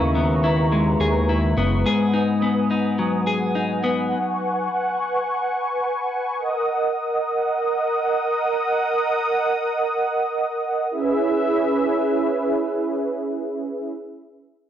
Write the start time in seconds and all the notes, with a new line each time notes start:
Already playing: C#3 G#3 B3 E4 G#4 B4 E5 A#5 C#6
0.01 D#2
0.15 B3
0.44 E4
0.72 G#3
1.00 D#2 G#4
1.29 E4
1.57 F#1 B3
1.85 G#2 G#4 F#5 G#5 D#6
2.13 D#4
2.42 B3
2.71 D#4
2.99 F#3
3.27 G#4
3.55 D#4
3.84 B3
4.12 C#6
6.38 A#4 D#5 F#5 D#6
10.91 C#4 E4 G#4 B4 E5